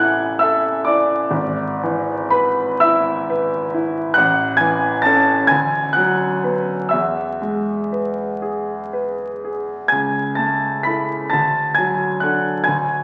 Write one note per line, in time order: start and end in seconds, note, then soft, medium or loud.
0.00 1.30 A1 medium
0.00 1.37 E3 medium
0.00 0.70 E4 medium
0.00 0.24 A4 medium
0.00 0.41 E5 medium
0.00 1.37 F#5 medium
0.00 1.36 G#5 medium
0.00 0.39 E6 medium
0.00 1.37 F#6 loud
0.00 1.36 G#6 loud
0.39 1.16 A4 medium
0.39 0.84 E5 medium
0.39 0.86 E6 loud
0.85 1.34 E4 medium
0.85 2.29 D5 medium
0.85 2.32 D6 medium
1.31 4.11 G#1 medium
1.83 2.64 E3 medium
2.30 2.78 B4 medium
2.30 2.81 B5 loud
2.80 3.55 E4 medium
2.80 4.12 E5 medium
2.80 4.15 E6 loud
3.30 4.00 B4 medium
3.74 4.17 E4 medium
4.14 5.47 A1 medium
4.14 4.57 F#5 medium
4.14 4.59 F#6 loud
4.57 5.32 E3 medium
4.57 5.00 G#5 medium
4.57 5.03 G#6 loud
5.02 5.46 C#4 medium
5.02 5.46 A5 medium
5.02 5.49 A6 loud
5.06 5.47 A4 medium
5.47 6.89 D2 medium
5.47 5.92 G#5 medium
5.47 5.95 G#6 loud
5.93 6.73 F#3 medium
5.93 6.87 F#5 medium
5.93 6.91 F#6 loud
6.44 6.88 B3 soft
6.44 6.89 B4 soft
6.89 9.85 E2 medium
6.89 8.35 E5 medium
6.89 8.38 E6 medium
7.42 8.20 G#3 soft
7.92 8.72 B4 soft
8.42 9.22 G#4 soft
8.93 9.71 B4 soft
9.44 9.91 G#4 soft
9.88 11.30 C#2 medium
9.88 10.34 G#5 medium
9.88 10.37 G#6 medium
10.35 11.15 A3 soft
10.35 10.82 A5 medium
10.35 10.85 A6 medium
10.83 11.29 E4 soft
10.83 11.29 A4 soft
10.83 11.29 B5 medium
10.83 11.32 B6 medium
11.30 12.62 D2 medium
11.30 11.74 A5 medium
11.30 11.77 A6 medium
11.75 12.49 F#3 soft
11.75 12.18 G#5 medium
11.75 12.21 G#6 medium
12.20 12.62 D4 soft
12.20 12.62 A4 soft
12.20 12.62 F#5 medium
12.20 12.65 F#6 medium
12.64 13.04 D2 medium
12.64 13.04 G#5 medium
12.64 13.04 G#6 medium